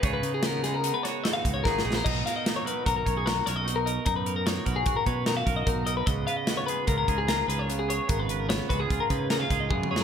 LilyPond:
<<
  \new Staff \with { instrumentName = "Clean electric guitar" } { \time 5/4 \key b \lydian \tempo 4 = 149 cis''16 b'8 gis'16 ais'8 gis'16 ais'8 b'16 cis''8 dis''16 eis''8 cis''16 ais'8 gis'16 ais'16 | dis''8 eis''16 dis''8 cis''16 b'8 ais'16 ais'8 gis'16 ais'8 cis''16 dis''8 ais'16 dis''8 | ais'16 b'8 ais'16 cis''8 b'16 gis'8 ais'16 b'8 ais'16 eis''8 dis''16 ais'8 dis''16 b'16 | dis''8 eis''16 dis''8 cis''16 b'8 ais'16 ais'8 gis'16 ais'8 b'16 cis''8 gis'16 cis''8 |
ais'16 b'8 ais'16 cis''8 b'16 gis'8 ais'16 b'8 ais'16 eis''8 dis''16 gis'8 cis''16 ais'16 | }
  \new Staff \with { instrumentName = "Clean electric guitar" } { \time 5/4 \key b \lydian << { <b dis' gis'>8 dis'8 b8 dis'8 b8 fis'8 dis'4 <b dis' gis'>8 dis'8 | dis'8 ais'8 dis'8 ais'8 fis'8 cis''8 fis'8 ais'8 dis'8 ais'8 | dis'8 ais'8 dis'8 ais'8 fis'8 cis''8 dis'16 fis'16 ais'8 dis'8 ais'8 | b8 b'8 b8 gis'8 eis'8 gis'8 eis'8 gis'8 b8 gis'8 |
b8 b'8 b8 fis'16 gis'16 eis'8 gis'8 dis'16 eis'16 gis'8 b8 gis'8 | } \\ { cis4. gis4. gis,4 cis4 | b,4. fis4 fis,4. b,4 | b,4. fis4 fis,4. b,4 | cis4. gis4 gis,4. cis4 |
cis4. gis4 gis,4. cis4 | } >> }
  \new Staff \with { instrumentName = "Fingered electric bass" } { \clef bass \time 5/4 \key b \lydian cis,8 cis2 r4 cis,8 gis,,8 ais,,8 | b,,8 r4. b,,8 b,,4 b,,4. | fis,4. b,,8 b,,16 r16 b,4 b,,8 b,,4 | cis,8 r4. cis,8 cis,4 cis,4. |
gis,,4. cis,8 cis,16 r16 cis4 cis,8 fis,4 | }
  \new DrumStaff \with { instrumentName = "Drums" } \drummode { \time 5/4 <hh bd>8 hh8 <hh sn>8 <hh sn>8 hh8 <hh sn>8 <hh sn>8 <hh bd>8 \tuplet 3/2 { <bd sn>8 sn8 sn8 } | <cymc bd>8 <hh sn>8 <hh sn>8 hh8 <hh bd>8 <hh bd>8 <hh sn>8 <hh sn>8 hh8 hh8 | <hh bd>8 hh8 <hh sn>8 <hh bd>8 <hh bd>8 <hh bd>8 <hh sn>8 <hh bd>8 <hh bd>8 hh8 | <hh bd>8 hh8 <hh sn>8 hh8 <hh bd>8 <hh bd>8 <hh sn>8 hh8 hh8 hh8 |
<hh bd>8 hh8 <hh sn>8 <hh bd>8 <hh bd>8 <hh bd>8 <hh sn>8 <hh bd>8 \tuplet 3/2 { <bd tommh>8 toml8 sn8 } | }
>>